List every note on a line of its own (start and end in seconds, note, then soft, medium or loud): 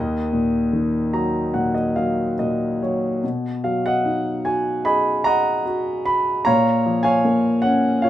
0.00 3.19 D#2 medium
0.00 2.34 A#4 medium
0.00 1.73 D#5 medium
0.33 1.52 A#2 soft
0.73 2.34 D#3 soft
1.14 1.94 F#3 soft
1.14 1.51 A#5 medium
1.54 2.38 A#2 soft
1.54 1.73 F#5 medium
1.74 1.94 D#5 medium
1.96 2.81 F#3 soft
1.96 2.36 F5 medium
2.39 3.21 A#2 soft
2.39 2.79 D#5 medium
2.82 3.22 F#3 soft
2.82 3.21 C#5 soft
3.23 6.42 B2 medium
3.64 5.22 F#3 soft
3.64 3.85 F5 medium
3.86 4.84 D#5 soft
3.86 4.47 F#5 medium
4.05 5.62 D#4 soft
4.45 5.64 F#4 soft
4.45 4.84 G#5 medium
4.85 6.42 G#4 medium
4.85 5.25 D#5 medium
4.85 6.43 G#5 medium
4.85 5.27 B5 medium
5.24 6.43 D#5 medium
5.24 6.43 F#5 medium
5.24 6.08 A#5 loud
5.65 6.44 F#4 soft
6.05 6.47 B5 medium
6.45 8.10 A#2 medium
6.45 7.03 C#5 medium
6.45 7.03 F5 medium
6.45 7.06 A#5 medium
6.86 8.10 F3 soft
7.03 8.02 C#5 medium
7.03 8.00 F5 medium
7.03 7.59 G#5 medium
7.24 8.10 A#3 soft
7.62 8.10 C#4 medium
7.62 8.03 F#5 medium
8.02 8.10 F4 medium
8.02 8.10 C#5 soft
8.02 8.10 F5 medium